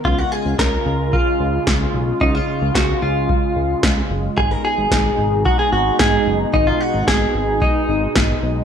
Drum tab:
SD |--o---o-|--o---o-|--o---o-|--o---o-|
BD |o-o-o-o-|o-o-o-o-|o-o-o-o-|o-o-o-o-|